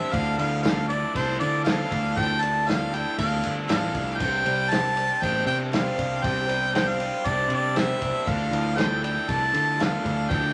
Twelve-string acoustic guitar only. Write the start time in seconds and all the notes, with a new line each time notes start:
Already playing: D4 G4 C5
0.12 D3 F3 A3 D4 E4 A4
0.38 A3 D4 E4 A4
0.62 D3 F3 A3 D4 E4 A4
0.89 A3 D4 E4 A4
1.13 A3 D4 E4 A4
1.65 D3 F3 A3 D4 E4 A4
1.88 A3 D4 E4 A4
2.15 D3 F3 A3 D4 E4 A4
2.41 A3 D4 E4 A4
2.67 D3 F3 A3 D4 E4 A4
2.92 A3 D4 E4 A4
3.17 A3 D4 A4
3.68 D3 F3 A3 D4 E4 A4
3.94 A3 D4 E4 A4
4.19 C4 D4 G4 C5
4.45 D4 G4 C5
4.71 C4 D4 G4 C5
4.95 D4 G4 C5
5.21 C4 D4 G4 C5
5.72 C4 D4 G4 C5
5.96 D4 G4 C5
6.22 C4 D4 G4 C5
6.47 D4 G4 C5
6.72 C4 D4 G4 C5
6.99 D4 G4 C5
7.24 C4 D4 G4 C5
7.75 C4 D4 G4 C5
8.01 D4 G4 C5
8.25 D3 F3 A3 D4 E4 A4
8.50 A3 D4 E4 A4
8.75 D3 F3 A3 D4 E4 A4
9.02 A3 D4 E4 A4
9.28 A3 D4 E4 A4
9.78 D3 F3 A3 D4 E4 A4
10.03 A3 D4 E4 A4
10.28 D3 F3 A3 D4 E4 A4